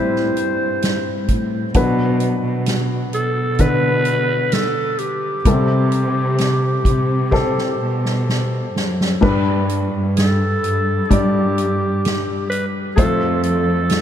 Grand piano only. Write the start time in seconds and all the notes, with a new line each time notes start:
Already playing: A2 G3 C4 E4 A4
1.75 B2 F#3 D4 B4
3.59 D3 D4 B4
5.46 C3 G3 B3 A4
5.53 C4
7.31 G4 A4 C5
9.21 G2 G3 D4 B4
11.10 G3 D4 D5
12.96 A3 F4 C5